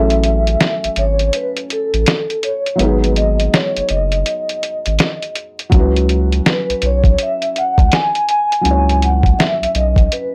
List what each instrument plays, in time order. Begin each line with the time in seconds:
Already playing: sub bass A1, felt piano F#3 A3 C#4 E4, vibraphone E5
0.00 felt piano A4
0.10 closed hi-hat
0.24 closed hi-hat
0.47 closed hi-hat
0.60 snare, closed hi-hat
0.84 sub bass G#1, closed hi-hat
0.96 sub bass G#1, vibraphone C#5, closed hi-hat
1.19 closed hi-hat
1.33 vibraphone B4, closed hi-hat
1.57 closed hi-hat
1.70 vibraphone A4, closed hi-hat
1.94 sub bass A1, closed hi-hat
2.06 snare, closed hi-hat
2.30 closed hi-hat
2.43 vibraphone C#5, closed hi-hat
2.66 closed hi-hat
2.75 felt piano F#3 G#3
2.79 sub bass G#1, felt piano B3 D#4, vibraphone B4, closed hi-hat
2.85 felt piano G#4
3.04 closed hi-hat
3.16 vibraphone D#5, closed hi-hat
3.40 closed hi-hat
3.54 vibraphone C#5, snare, closed hi-hat
3.77 sub bass F#1, closed hi-hat
3.89 sub bass F#1, vibraphone D#5, closed hi-hat
4.12 closed hi-hat
4.26 closed hi-hat
4.49 closed hi-hat
4.63 closed hi-hat
4.86 sub bass G#1, closed hi-hat
4.99 snare, closed hi-hat
5.22 closed hi-hat
5.35 closed hi-hat
5.59 closed hi-hat
5.70 sub bass C#2, felt piano F#3 C#4, kick, closed hi-hat
5.74 felt piano E4 F#4
5.79 felt piano B4
5.96 closed hi-hat
6.09 closed hi-hat
6.32 closed hi-hat
6.46 vibraphone B4, snare, closed hi-hat
6.70 sub bass B1, closed hi-hat
6.82 sub bass B1, closed hi-hat
6.86 vibraphone C#5
7.04 kick, closed hi-hat
7.18 closed hi-hat
7.23 vibraphone E5
7.42 closed hi-hat
7.56 vibraphone F#5, closed hi-hat
7.78 sub bass C#2, kick, closed hi-hat
7.92 vibraphone G#5, snare, closed hi-hat
8.15 closed hi-hat
8.29 vibraphone G#5, closed hi-hat
8.52 closed hi-hat
8.61 felt piano F#3 C#4, closed hi-hat
8.66 sub bass C#2, felt piano E4 F#4
8.71 felt piano C#5
8.89 closed hi-hat
9.02 vibraphone F#5, closed hi-hat
9.23 kick, closed hi-hat
9.39 vibraphone E5, snare, closed hi-hat
9.62 sub bass B1, closed hi-hat
9.75 sub bass B1, vibraphone D#5, closed hi-hat
9.96 kick, closed hi-hat
10.12 vibraphone B4, closed hi-hat